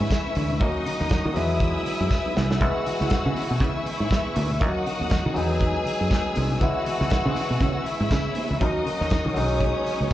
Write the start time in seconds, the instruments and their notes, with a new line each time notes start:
Already playing: tine electric piano E3 G#3 B3 E4, string section E4 B4 E5 G#5 C#6 E6
0.00 fingered electric bass G#2, clean electric guitar G#3 C#4 E4 C#5
0.11 muted clean electric guitar stroke, kick, snare, closed hi-hat, tambourine
0.24 clean electric guitar G#3 C#4 E4 B4, muted conga
0.35 fingered electric bass D2, clean electric guitar G#3 C#4 E4 B4, open hi-hat
0.50 muted clean electric guitar stroke, low conga
0.60 fingered electric bass D#2, tine electric piano F#3 A#3 C#4 D#4, clean electric guitar A#3 C#4 F#4 A#4, string section D#4 A#4 D#5 F#5 D#6, kick, closed hi-hat, muted conga, low conga
0.86 muted clean electric guitar stroke, open hi-hat, high conga
0.99 fingered electric bass D#2, clean electric guitar A#3 C#4 F#4 A#4, snare, high conga
1.10 muted clean electric guitar stroke, muted fingered electric bass stroke, kick, snare, closed hi-hat, tambourine, muted conga
1.24 fingered electric bass D#3, clean electric guitar A#3 C#4 F#4 A#4, muted conga, low conga
1.34 fingered electric bass E2, tine electric piano F#3 G#3 B3 E4, clean electric guitar B3 D#4 G#4 B4, string section E4 B4 E5 G#5 E6, open hi-hat, high conga
1.49 muted clean electric guitar stroke
1.60 clean electric guitar B3 D#4 G#4 B4, kick, closed hi-hat, muted conga, high conga
1.75 muted clean electric guitar stroke, muted conga
1.86 muted clean electric guitar stroke, open hi-hat, high conga
2.00 fingered electric bass F#2, clean electric guitar B3 D#4 G#4 C#5
2.11 muted clean electric guitar stroke, kick, snare, tambourine, muted conga
2.25 clean electric guitar B3 D#4 G#4 B4
2.36 fingered electric bass C2, clean electric guitar B3 D#4 G#4 B4, snare
2.50 muted clean electric guitar stroke, snare, low conga
2.59 fingered electric bass C#2, tine electric piano D#3 G#3 B3 E4, clean electric guitar B3 E4 G#4 B4, string section F#4 F#5 G#5 C#6, kick, closed hi-hat, muted conga, low conga
2.65 tine electric piano E3
2.86 muted clean electric guitar stroke, open hi-hat, high conga
3.00 fingered electric bass C#2, clean electric guitar B3 E4 G#4 B4, snare, high conga
3.10 muted clean electric guitar stroke, kick, snare, closed hi-hat, tambourine, muted conga
3.25 fingered electric bass C#3, clean electric guitar B3 E4 G#4 B4, muted conga, low conga
3.36 clean electric guitar B3 E4 G#4 B4, open hi-hat, high conga
3.50 fingered electric bass B2, muted clean electric guitar stroke
3.60 fingered electric bass C#3, clean electric guitar B3 E4 G#4 B4, string section E4 E5, kick, closed hi-hat, muted conga, high conga
3.75 muted clean electric guitar stroke, muted conga
3.86 muted clean electric guitar stroke, open hi-hat, high conga
3.99 fingered electric bass G#2, clean electric guitar B3 E4 G#4 C#5
4.10 muted clean electric guitar stroke, kick, snare, closed hi-hat, tambourine
4.24 clean electric guitar B3 E4 G#4 B4, muted conga
4.35 fingered electric bass D2, clean electric guitar B3 E4 G#4 B4, open hi-hat
4.49 muted clean electric guitar stroke, low conga
4.60 fingered electric bass D#2, tine electric piano E3 A#3 C#4 D#4, clean electric guitar F#3 C#4 D#4 A#4, string section F#4 A#4 F#5 D#6, kick, closed hi-hat, muted conga, low conga
4.66 tine electric piano F#3
4.75 muted conga
4.86 muted clean electric guitar stroke, open hi-hat, high conga
4.99 fingered electric bass D#2, clean electric guitar F#3 C#4 D#4 A#4, high conga
5.10 muted clean electric guitar stroke, muted fingered electric bass stroke, kick, snare, closed hi-hat, tambourine, muted conga
5.24 fingered electric bass D#3, clean electric guitar F#3 C#4 D#4 A#4, low conga
5.34 fingered electric bass E2, tine electric piano F#3 G#3 B3 D#4, clean electric guitar B3 D#4 G#4 B4, string section G#4 B4 G#5 D#6 E6, open hi-hat, high conga
5.50 muted clean electric guitar stroke
5.60 clean electric guitar B3 D#4 G#4 B4, kick, closed hi-hat, muted conga, high conga
5.75 muted clean electric guitar stroke
5.86 muted clean electric guitar stroke, open hi-hat, high conga
5.99 fingered electric bass F#2, clean electric guitar B3 D#4 G#4 C#5
6.11 muted clean electric guitar stroke, kick, snare, closed hi-hat, tambourine
6.24 clean electric guitar B3 D#4 G#4 B4
6.35 fingered electric bass C2, clean electric guitar B3 D#4 G#4 B4, open hi-hat
6.50 muted clean electric guitar stroke, low conga
6.60 fingered electric bass C#2, tine electric piano E3 G#3 B3 E4, clean electric guitar B3 E4 G#4 C#5, string section F#4 F#5 C#6, kick, closed hi-hat, muted conga, low conga
6.85 muted clean electric guitar stroke, open hi-hat, high conga
6.99 fingered electric bass C#2, clean electric guitar B3 E4 G#4 C#5, snare, high conga
7.10 muted clean electric guitar stroke, kick, snare, closed hi-hat, tambourine, muted conga
7.25 fingered electric bass C#3, clean electric guitar B3 E4 G#4 C#5, low conga
7.35 clean electric guitar B3 E4 G#4 C#5, open hi-hat, high conga
7.50 fingered electric bass B2, muted clean electric guitar stroke
7.60 fingered electric bass C#3, clean electric guitar B3 E4 G#4 C#5, kick, closed hi-hat, muted conga, high conga
7.74 muted clean electric guitar stroke
7.85 string section E4 E5, muted clean electric guitar stroke, open hi-hat, high conga
7.99 fingered electric bass G#2, clean electric guitar B3 E4 G#4 D#5
8.10 fingered electric bass C#3, muted clean electric guitar stroke, kick, snare, closed hi-hat, tambourine
8.25 clean electric guitar B3 E4 G#4 C#5
8.35 clean electric guitar B3 E4 G#4 C#5, open hi-hat
8.49 fingered electric bass C#2, muted clean electric guitar stroke, low conga
8.60 fingered electric bass D#2, tine electric piano F#3 A#3 C#4 D#4, clean electric guitar C#4 F#4 A#4 C#5, string section D#4 A#4 D#5 F#5 C#6 D#6, kick, closed hi-hat, low conga
8.86 muted clean electric guitar stroke, open hi-hat, high conga
9.00 fingered electric bass D#2, clean electric guitar C#4 F#4 A#4 C#5, snare
9.10 muted clean electric guitar stroke, muted fingered electric bass stroke, kick, snare, closed hi-hat, tambourine
9.25 fingered electric bass D#3, clean electric guitar C#4 F#4 A#4 C#5, muted conga, low conga
9.34 fingered electric bass B1, tine electric piano F#3 G#3 C#4 D#4, clean electric guitar B3 D#4 G#4 C#5, string section C#4 B4 C#5 G#5, open hi-hat, high conga
9.51 muted clean electric guitar stroke
9.60 clean electric guitar B3 D#4 G#4 C#5, kick, closed hi-hat, muted conga, high conga
9.76 muted clean electric guitar stroke
9.86 muted clean electric guitar stroke, open hi-hat, high conga
10.01 fingered electric bass C#2, clean electric guitar B3 D#4 G#4 D#5